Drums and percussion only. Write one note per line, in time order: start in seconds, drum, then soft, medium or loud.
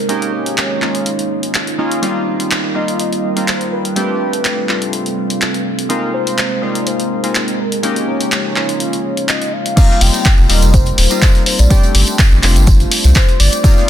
0.09 closed hi-hat medium
0.22 closed hi-hat soft
0.46 closed hi-hat soft
0.58 clap loud
0.58 closed hi-hat medium
0.82 clap medium
0.95 closed hi-hat soft
1.06 closed hi-hat medium
1.19 closed hi-hat soft
1.43 closed hi-hat soft
1.54 clap loud
1.54 closed hi-hat medium
1.67 closed hi-hat soft
1.92 closed hi-hat soft
2.03 closed hi-hat medium
2.40 closed hi-hat soft
2.51 clap loud
2.51 closed hi-hat medium
2.88 closed hi-hat soft
3.00 closed hi-hat medium
3.12 closed hi-hat soft
3.37 closed hi-hat soft
3.48 clap loud
3.48 closed hi-hat medium
3.61 closed hi-hat soft
3.85 closed hi-hat soft
3.96 closed hi-hat medium
4.33 closed hi-hat soft
4.45 clap loud
4.45 closed hi-hat medium
4.69 clap medium
4.82 closed hi-hat soft
4.93 closed hi-hat medium
5.06 closed hi-hat soft
5.30 closed hi-hat medium
5.41 clap loud
5.41 closed hi-hat medium
5.54 closed hi-hat soft
5.79 closed hi-hat soft
5.90 closed hi-hat medium
6.27 closed hi-hat medium
6.38 clap loud
6.38 closed hi-hat medium
6.75 closed hi-hat soft
6.87 closed hi-hat medium
7.00 closed hi-hat soft
7.24 closed hi-hat medium
7.35 clap loud
7.35 closed hi-hat medium
7.48 closed hi-hat soft
7.72 closed hi-hat medium
7.83 closed hi-hat medium
7.96 closed hi-hat soft
8.21 closed hi-hat medium
8.32 clap loud
8.32 closed hi-hat medium
8.56 clap medium
8.69 closed hi-hat soft
8.80 closed hi-hat medium
8.93 closed hi-hat soft
9.17 closed hi-hat medium
9.29 clap loud
9.29 closed hi-hat medium
9.42 closed hi-hat soft
9.66 closed hi-hat medium
9.77 kick loud
9.77 closed hi-hat medium
9.77 crash loud
9.77 tambourine medium
9.77 tambourine loud
9.89 snare medium
9.89 tambourine soft
10.01 open hi-hat medium
10.01 open hi-hat loud
10.14 closed hi-hat medium
10.14 tambourine medium
10.25 kick loud
10.25 snare loud
10.25 clap loud
10.25 closed hi-hat medium
10.25 tambourine medium
10.38 tambourine soft
10.49 open hi-hat medium
10.49 tambourine medium
10.62 closed hi-hat medium
10.62 tambourine medium
10.73 kick loud
10.73 closed hi-hat medium
10.73 tambourine medium
10.86 closed hi-hat soft
10.86 tambourine soft
10.98 snare soft
10.98 open hi-hat loud
10.98 tambourine medium
11.11 closed hi-hat medium
11.11 closed hi-hat soft
11.11 tambourine medium
11.22 kick loud
11.22 snare loud
11.22 clap loud
11.22 closed hi-hat medium
11.22 tambourine medium
11.35 snare soft
11.35 closed hi-hat soft
11.35 tambourine soft
11.46 open hi-hat medium
11.46 tambourine medium
11.59 closed hi-hat soft
11.59 closed hi-hat medium
11.59 tambourine medium
11.70 kick loud
11.70 closed hi-hat medium
11.70 tambourine loud
11.70 tambourine medium
11.83 closed hi-hat soft
11.83 tambourine soft
11.95 open hi-hat loud
11.95 tambourine medium
12.07 closed hi-hat medium
12.07 tambourine medium
12.19 kick loud
12.19 snare loud
12.19 clap loud
12.19 closed hi-hat medium
12.19 tambourine medium
12.32 tambourine soft
12.43 clap medium
12.43 open hi-hat loud
12.43 tambourine medium
12.56 closed hi-hat medium
12.56 tambourine medium
12.67 kick loud
12.67 closed hi-hat medium
12.67 tambourine medium
12.80 closed hi-hat soft
12.80 tambourine soft
12.91 open hi-hat loud
12.91 tambourine medium
13.04 snare medium
13.04 closed hi-hat medium
13.04 tambourine medium
13.15 kick loud
13.15 snare loud
13.15 clap loud
13.15 closed hi-hat medium
13.15 tambourine medium
13.29 closed hi-hat soft
13.29 tambourine soft
13.40 open hi-hat medium
13.40 tambourine medium
13.52 closed hi-hat soft
13.52 closed hi-hat medium
13.52 tambourine medium
13.64 kick loud
13.64 closed hi-hat medium
13.64 tambourine loud
13.64 tambourine medium
13.77 snare soft
13.77 tambourine soft